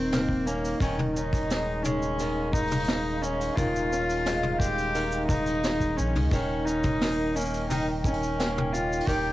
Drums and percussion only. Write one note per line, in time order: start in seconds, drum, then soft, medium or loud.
0.12 snare loud
0.12 mid tom medium
0.12 open hi-hat medium
0.12 shaker medium
0.29 kick medium
0.47 shaker medium
0.65 open hi-hat medium
0.65 shaker medium
0.80 kick loud
0.80 open hi-hat medium
0.80 shaker medium
0.99 mid tom medium
1.17 shaker medium
1.33 kick loud
1.33 open hi-hat medium
1.33 shaker medium
1.50 snare loud
1.50 open hi-hat medium
1.50 shaker medium
1.85 mid tom medium
1.85 shaker medium
2.02 shaker soft
2.19 open hi-hat medium
2.19 shaker medium
2.53 kick loud
2.53 open hi-hat soft
2.53 shaker medium
2.58 open hi-hat soft
2.63 open hi-hat soft
2.67 open hi-hat soft
2.71 mid tom medium
2.71 open hi-hat soft
2.71 open hi-hat medium
2.71 shaker medium
2.75 open hi-hat soft
2.80 open hi-hat soft
2.84 open hi-hat medium
2.88 snare loud
2.88 open hi-hat medium
2.88 shaker medium
3.23 shaker medium
3.41 open hi-hat medium
3.41 shaker medium
3.57 kick loud
3.57 mid tom medium
3.57 open hi-hat medium
3.57 shaker medium
3.76 shaker medium
3.93 shaker medium
4.09 open hi-hat medium
4.09 shaker soft
4.26 snare loud
4.26 open hi-hat medium
4.26 shaker medium
4.43 mid tom medium
4.60 kick loud
4.60 open hi-hat soft
4.60 shaker medium
4.78 open hi-hat medium
4.78 shaker soft
4.95 open hi-hat medium
4.95 shaker medium
5.12 shaker soft
5.29 kick loud
5.29 mid tom medium
5.29 open hi-hat medium
5.29 shaker medium
5.46 open hi-hat soft
5.46 shaker medium
5.63 snare medium
5.63 open hi-hat medium
5.63 shaker medium
5.80 kick medium
5.80 shaker soft
5.98 shaker medium
6.15 mid tom medium
6.15 open hi-hat medium
6.31 kick loud
6.31 open hi-hat medium
6.31 shaker medium
6.67 shaker medium
6.84 kick loud
6.84 mid tom medium
6.84 open hi-hat medium
6.84 shaker soft
7.01 snare medium
7.01 open hi-hat medium
7.01 shaker medium
7.37 shaker medium
7.41 shaker medium
7.45 shaker medium
7.50 shaker soft
7.54 open hi-hat medium
7.54 shaker soft
7.71 mid tom medium
7.71 open hi-hat medium
7.71 shaker medium
8.04 kick loud
8.04 shaker medium
8.13 open hi-hat medium
8.23 shaker medium
8.40 snare loud
8.40 open hi-hat medium
8.40 shaker medium
8.58 mid tom medium
8.74 shaker medium
8.93 shaker medium
9.00 open hi-hat medium
9.07 kick loud
9.07 open hi-hat medium
9.07 shaker soft